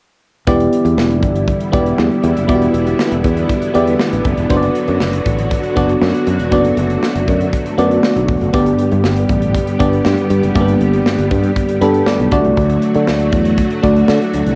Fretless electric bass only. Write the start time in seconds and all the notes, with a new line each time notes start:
0.47 E1
0.85 E2
0.97 E1
1.23 G1
1.73 E1
1.98 E2
2.24 E2
2.37 F#1
2.49 E1
2.74 E1
3.12 E1
3.24 E2
3.75 E2
4.13 A1
4.25 F#1
4.38 E1
4.50 F#1
4.89 F#2
5.01 F#1
5.26 A1
5.77 F#1
6.02 F#2
6.27 F#2
6.40 E1
6.52 F#1
6.77 F#1
7.15 F#1
7.28 F#2
7.78 F#2
8.16 B1
8.29 E1
8.41 F#1
8.54 G1
8.92 G2
9.04 G1
9.29 A1
9.80 G1
10.05 G2
10.30 G2
10.43 F#1
10.55 G1
10.81 G1
11.19 G1
11.31 G2
11.82 G2
12.20 B1
12.32 D2
12.45 C2
12.57 D2
12.96 D3
13.08 D2
13.33 E2
13.83 D2
14.09 D3
14.34 D2
14.47 C2